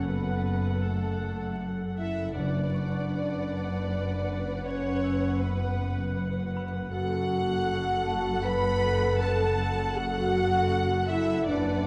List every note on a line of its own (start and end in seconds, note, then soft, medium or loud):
0.00 2.33 F#1 medium
0.00 2.33 F#1 soft
0.00 2.33 F#2 soft
0.00 2.33 A4 soft
0.00 2.33 F#5 soft
0.08 0.83 B3 medium
0.08 0.83 B4 medium
0.08 0.83 B4 soft
0.85 1.61 A3 medium
0.85 1.61 A4 soft
1.98 2.34 E4 medium
1.98 2.34 E5 medium
1.98 2.35 E5 medium
2.35 6.89 F#1 medium
2.35 6.89 F#1 soft
2.35 6.88 F#2 medium
2.35 3.47 F#2 medium
2.35 4.64 D4 medium
2.35 6.88 B4 soft
2.35 4.60 D5 medium
2.35 4.66 D5 medium
2.35 6.88 F#5 soft
2.75 4.99 C#6 soft
4.65 5.39 C#4 medium
4.65 5.41 C#5 medium
4.65 5.40 C#5 medium
5.04 7.27 E6 soft
5.41 6.17 B3 medium
5.41 6.17 B4 medium
6.56 8.79 B4 soft
6.56 8.79 B5 medium
6.91 11.44 F#1 medium
6.91 11.45 F#1 medium
6.91 11.44 F#2 medium
6.91 8.40 F#4 loud
6.91 11.44 A4 medium
6.91 11.44 F#5 medium
6.91 8.40 F#5 medium
6.91 8.41 F#5 medium
8.06 10.30 A5 medium
8.43 9.20 B4 loud
8.43 9.20 B5 loud
8.43 9.20 B5 medium
9.20 9.97 A4 loud
9.20 11.45 B4 medium
9.20 9.94 A5 medium
9.20 9.96 A5 medium
9.20 11.45 B5 medium
9.95 11.11 F#4 loud
9.95 11.09 F#5 loud
9.95 11.10 F#5 medium
11.08 11.48 E4 medium
11.08 11.46 E5 loud
11.08 11.48 E5 medium
11.46 11.87 F#1 medium
11.46 11.87 F#2 medium
11.46 11.54 F#2 soft
11.46 11.87 D4 loud
11.46 11.87 B4 medium
11.46 11.87 D5 medium
11.46 11.87 F#5 medium
11.55 11.61 F#2 soft
11.63 11.69 F#2 soft
11.78 11.84 F#2 soft